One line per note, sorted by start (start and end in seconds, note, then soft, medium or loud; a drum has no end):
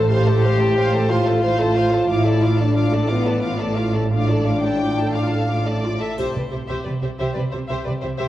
0.00 2.06 A1 medium
0.00 2.06 A2 medium
0.00 0.10 A4 medium
0.00 0.10 C5 medium
0.09 1.08 G4 loud
0.09 0.26 C5 medium
0.09 0.26 F5 medium
0.09 0.25 C6 medium
0.27 0.44 A4 medium
0.27 0.43 C5 medium
0.27 0.43 A5 medium
0.43 0.60 C5 medium
0.43 0.60 F5 soft
0.43 0.60 C6 medium
0.60 0.77 A4 medium
0.60 0.76 C5 medium
0.60 0.77 A5 medium
0.78 0.93 C5 medium
0.78 0.93 F5 medium
0.78 0.93 C6 medium
0.93 1.11 A4 medium
0.93 1.10 C5 medium
0.93 1.10 A5 medium
1.09 1.59 F4 loud
1.09 1.27 C5 medium
1.09 1.27 F5 medium
1.09 1.27 C6 medium
1.28 1.44 A4 medium
1.28 1.44 C5 medium
1.28 1.44 A5 medium
1.43 1.59 C5 medium
1.43 1.59 F5 medium
1.43 1.59 C6 medium
1.60 2.09 F4 loud
1.60 1.77 A4 medium
1.60 1.77 C5 medium
1.60 1.77 A5 medium
1.76 1.93 C5 medium
1.76 1.93 F5 medium
1.76 1.93 C6 medium
1.93 2.10 A4 medium
1.93 2.10 C5 medium
1.93 2.10 A5 medium
2.09 5.96 A1 medium
2.09 5.97 A2 medium
2.09 2.60 E4 loud
2.09 2.25 F4 medium
2.09 2.26 F5 medium
2.09 2.25 D6 medium
2.26 2.43 A4 medium
2.26 2.43 D5 medium
2.26 2.43 A5 medium
2.42 2.60 F4 medium
2.42 2.60 F5 medium
2.42 2.59 D6 medium
2.58 3.10 D4 medium
2.58 2.76 A4 medium
2.58 2.77 D5 medium
2.58 2.76 A5 medium
2.76 2.92 F4 medium
2.76 2.92 F5 medium
2.76 2.92 D6 soft
2.93 3.10 A4 medium
2.93 3.10 D5 soft
2.93 3.10 A5 medium
3.09 3.60 B3 loud
3.09 3.27 F4 medium
3.09 3.27 F5 soft
3.09 3.26 D6 medium
3.26 3.44 A4 soft
3.26 3.44 D5 medium
3.26 3.43 A5 medium
3.42 3.59 F4 soft
3.42 3.59 F5 soft
3.42 3.59 D6 soft
3.60 4.12 A3 medium
3.60 3.78 A4 soft
3.60 3.78 D5 medium
3.60 3.77 A5 soft
3.77 3.95 F4 soft
3.77 3.95 F5 soft
3.77 3.95 D6 soft
3.93 4.12 A4 soft
3.93 4.12 D5 soft
3.93 4.13 A5 medium
4.10 6.01 D4 medium
4.10 4.29 F4 soft
4.10 4.28 F5 soft
4.10 4.28 D6 soft
4.28 4.47 A4 soft
4.28 4.46 D5 soft
4.28 4.47 A5 soft
4.46 4.65 F4 soft
4.46 4.64 F5 soft
4.46 4.64 D6 soft
4.62 4.81 A4 soft
4.62 5.11 G5 medium
4.62 4.82 A5 soft
4.82 4.97 F4 soft
4.82 4.97 D6 soft
4.98 5.16 A4 soft
4.98 5.15 A5 soft
5.14 5.32 F4 medium
5.14 5.66 F5 medium
5.14 5.32 D6 soft
5.30 5.50 A4 soft
5.30 5.48 A5 soft
5.49 5.65 F4 soft
5.49 5.65 D6 soft
5.66 5.83 A4 soft
5.66 6.01 D5 medium
5.66 5.83 A5 soft
5.83 6.00 F4 soft
5.83 6.00 D6 soft
6.00 6.18 A4 soft
6.00 6.18 E5 soft
6.00 6.18 A5 soft
6.17 6.25 C2 soft
6.17 6.24 C3 soft
6.17 6.33 G4 soft
6.17 6.34 C5 soft
6.17 6.33 E5 soft
6.17 triangle soft
6.34 6.41 C2 soft
6.34 6.42 C3 soft
6.34 6.41 G4 soft
6.34 6.43 B4 soft
6.34 6.41 D5 soft
6.51 6.58 C2 soft
6.51 6.58 C3 soft
6.51 6.58 G4 soft
6.51 6.59 C5 soft
6.51 6.58 E5 soft
6.67 6.76 C2 soft
6.67 6.75 C3 soft
6.67 6.84 G4 soft
6.67 6.84 C5 soft
6.67 6.84 E5 soft
6.84 6.92 C2 soft
6.84 6.92 C3 soft
6.84 6.92 G4 soft
6.84 6.92 B4 soft
6.84 6.91 D5 soft
7.02 7.09 C2 soft
7.02 7.09 C3 soft
7.02 7.09 G4 soft
7.02 7.10 C5 soft
7.02 7.09 E5 soft
7.18 7.26 C2 soft
7.18 7.26 C3 soft
7.18 7.35 G4 soft
7.18 7.35 C5 soft
7.18 7.34 E5 soft
7.35 7.43 C2 soft
7.35 7.43 C3 soft
7.35 7.43 G4 soft
7.35 7.42 B4 soft
7.35 7.42 D5 soft
7.51 7.60 C2 soft
7.51 7.59 C3 soft
7.51 7.60 G4 soft
7.51 7.59 C5 soft
7.51 7.58 E5 soft
7.68 7.76 C2 soft
7.68 7.76 C3 soft
7.68 7.85 G4 soft
7.68 7.85 C5 soft
7.68 7.84 E5 soft
7.85 7.93 C2 soft
7.85 7.93 C3 soft
7.85 7.93 G4 soft
7.85 7.92 B4 soft
7.85 7.92 D5 soft
8.02 8.10 C2 soft
8.02 8.09 C3 soft
8.02 8.10 G4 soft
8.02 8.09 C5 soft
8.02 8.09 E5 soft
8.18 8.26 C2 soft
8.18 8.26 C3 soft
8.18 8.28 G4 soft
8.18 8.28 C5 soft
8.18 8.28 E5 soft